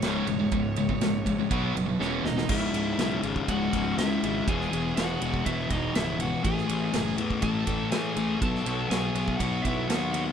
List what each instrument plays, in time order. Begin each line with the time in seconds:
Already playing: lead electric guitar C#5
0.02 fingered electric bass C#1, distorted electric guitar C#2 G#2 C#3, snare, ride
0.27 fingered electric bass E1, distorted electric guitar C#2 G#2, ride
0.40 distorted electric guitar C#2 G#2
0.52 fingered electric bass C#1, distorted electric guitar C#2 G#2, kick, ride
0.76 distorted electric guitar C#2 G#2, ride
0.89 distorted electric guitar C#2 G#2, kick
1.01 fingered electric bass A#1, distorted electric guitar C#2 G#2, snare, ride
1.26 distorted electric guitar C#2 G#2, kick, ride
1.39 distorted electric guitar C#2 G#2
1.50 fingered electric bass B1, distorted electric guitar B2 F#3 B3, kick, ride
1.75 fingered electric bass F#1, distorted electric guitar B2 F#3, ride
1.86 distorted electric guitar B2 F#3
1.99 fingered electric bass E1, distorted electric guitar E2 B2 E3, lead electric guitar C#4 C#5, snare
2.24 fingered electric bass D#1, distorted electric guitar E2 B2, lead electric guitar D#4 D#5, snare
2.36 distorted electric guitar E2 B2, snare
2.49 fingered electric bass C#1, distorted electric guitar C#2 G#2 C#3, lead electric guitar E4 E5, kick, crash
2.73 fingered electric bass C#1, distorted electric guitar C#2 G#2 C#3, ride
2.98 fingered electric bass B1, distorted electric guitar C#2 G#2 C#3, snare, ride
3.23 fingered electric bass G#1, distorted electric guitar C#2 G#2 C#3, ride
3.36 kick
3.48 fingered electric bass C#1, distorted electric guitar C#2 G#2 C#3, lead electric guitar F#4 F#5, kick, ride
3.73 fingered electric bass C#1, distorted electric guitar C#2 G#2 C#3, kick, ride
3.98 fingered electric bass C#2, distorted electric guitar C#2 G#2 C#3, lead electric guitar E4 E5, snare, ride
4.23 fingered electric bass G#1, distorted electric guitar C#2 G#2 C#3, ride
4.47 fingered electric bass E1, distorted electric guitar E2 B2 E3, lead electric guitar G#4 G#5, kick, ride
4.61 snare
4.72 fingered electric bass E1, distorted electric guitar E2 B2 E3, lead electric guitar G#4 G#5, ride
4.96 fingered electric bass E1, distorted electric guitar E2 B2 E3, lead electric guitar F#4 F#5, snare, ride
5.20 fingered electric bass E1, distorted electric guitar E2 B2 E3, ride
5.34 kick
5.45 fingered electric bass E1, distorted electric guitar E2 B2 E3, lead electric guitar E4 E5, kick, ride
5.70 fingered electric bass E1, distorted electric guitar E2 B2 E3, lead electric guitar D#5, kick, ride
5.74 lead electric guitar D#4
5.94 fingered electric bass C#1, distorted electric guitar E2 B2 E3, lead electric guitar E4 E5, snare, ride
6.18 distorted electric guitar E2 B2 E3, lead electric guitar F#4 F#5, ride
6.43 fingered electric bass A1, distorted electric guitar A2 E3 A3, lead electric guitar G#4 G#5, kick, ride
6.58 snare
6.67 fingered electric bass A1, distorted electric guitar A2 E3 A3, ride
6.92 fingered electric bass F#1, distorted electric guitar A2 E3 A3, snare, ride
7.18 fingered electric bass E2, distorted electric guitar A2 E3 A3, ride
7.30 kick
7.42 fingered electric bass A1, distorted electric guitar A2 E3 A3, lead electric guitar A4 A5, kick, ride
7.67 fingered electric bass A1, distorted electric guitar A2 E3 A3, kick, ride
7.91 distorted electric guitar A2 E3 A3, fingered electric bass A2, lead electric guitar G#4 G#5, snare, ride
8.16 fingered electric bass A1, distorted electric guitar A2 E3 A3, ride
8.41 fingered electric bass B1, distorted electric guitar B2 F#3 B3, lead electric guitar A4 A5, kick, ride
8.55 snare
8.66 fingered electric bass B1, distorted electric guitar B2 F#3 B3, ride
8.89 fingered electric bass B1, distorted electric guitar B2 F#3 B3, lead electric guitar G#4 G#5, snare, ride
9.15 fingered electric bass B1, distorted electric guitar B2 F#3 B3, ride
9.28 kick
9.37 fingered electric bass B1, distorted electric guitar B2 F#3 B3, lead electric guitar F#4 F#5, kick, ride
9.62 fingered electric bass B1, distorted electric guitar B2 F#3 B3, lead electric guitar E4 E5, kick, ride
9.87 fingered electric bass D#2, distorted electric guitar B2 F#3 B3, lead electric guitar F#4 F#5, snare, ride
10.14 distorted electric guitar B2 F#3 B3, ride